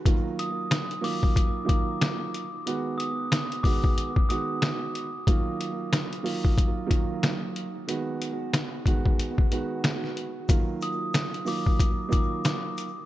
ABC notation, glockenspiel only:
X:1
M:4/4
L:1/16
Q:"Swing 16ths" 1/4=92
K:Ebm
V:1 name="Glockenspiel"
z2 e'2 z2 =d' z3 d'2 z4 | z2 e'2 z2 =d' z3 e'3 z3 | z16 | z16 |
z2 e'2 z2 =d' z3 d'2 z4 |]